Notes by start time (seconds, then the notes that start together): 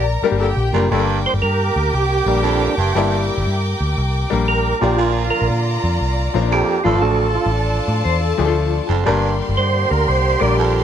Already playing: A#1 A#4 D5 A#5
0.22 D3 G3 A#3 D4 G4 A#4, muted picked electric bass stroke
0.32 G1 G4
0.40 D3 A#3 G4 A4 G5
0.56 A#1 G4
0.73 F#1 A#2 G3 A#3 D4 A#4
0.90 G1 G2 D3 G3 A#3 D4 G4 A#4 G5 D6
0.94 A4
0.99 A#4
1.26 C5
1.34 G1
1.42 G2 A#4
1.76 D2
1.94 C2 G4
2.26 A#1 G3 A#3 D4 A#4
2.43 F2 D4
2.77 F#1 G2
2.95 G1 G2 G3 A#3 D4 E4
3.38 G1
3.47 G2
3.81 D2
3.98 C2
4.30 A#1 G3 A#3 D4 A#4
4.48 A#4
4.81 A#1 A#2 D3 F3 A#3 D4 F4 G4 A#4 D5 A#5
4.97 A#2 F4
5.30 A#4
5.42 A#1
5.50 A#2
5.84 F2
6.01 C2
6.34 A#1 F3 A#3 C#4 A#4
6.42 D4
6.51 F2 G4
6.84 A1 G2 F3 A3 D4 F4 A4 D5 A5
6.95 G1
7.02 A1 D2 A4
7.35 F4
7.46 A1
7.88 A2
8.04 E2 C5
8.21 A4
8.38 D2 F3 A3 D4 G4 G#4
8.45 F4 A4
8.88 F#1 F2
9.05 G1 G2 D3 G3 A#3 D4 G4 A#4 D5 C6
9.49 G1
9.57 G2 C5
9.91 D2 A#4
10.08 C2 C5
10.40 A#1 G3 A#3 D4 A#4 D5
10.58 F2